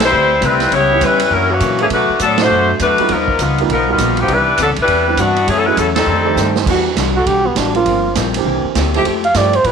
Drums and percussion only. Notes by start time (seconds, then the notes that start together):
0.00 snare, ride
0.42 kick, hi-hat pedal, ride
0.60 snare, ride
0.71 kick, ride
1.01 kick, hi-hat pedal, ride
1.19 ride
1.31 kick
1.60 kick, hi-hat pedal, ride
1.79 ride
1.90 kick, ride
2.19 kick, hi-hat pedal, ride
2.38 snare, ride
2.79 kick, hi-hat pedal, ride
2.98 ride
3.09 kick, ride
3.28 kick
3.39 kick, hi-hat pedal, ride
3.58 ride
3.69 kick, ride
3.98 kick, hi-hat pedal, ride
4.17 ride
4.28 kick, ride
4.57 kick, hi-hat pedal, ride
4.76 ride
4.88 kick, ride
5.17 kick, hi-hat pedal, ride
5.36 ride
5.47 kick, ride
5.77 kick, hi-hat pedal, ride
5.96 snare, ride
6.37 snare, hi-hat pedal
6.56 snare
6.66 kick, crash
6.96 kick, snare, hi-hat pedal, ride
7.26 kick, ride
7.56 kick, snare, hi-hat pedal, ride
7.75 ride
7.86 kick, ride
8.15 kick, snare, hi-hat pedal, ride
8.34 ride
8.46 kick
8.75 kick, snare, hi-hat pedal, ride
8.94 ride
9.05 kick, ride
9.24 ride
9.34 kick, snare, hi-hat pedal, ride
9.53 ride
9.64 kick, ride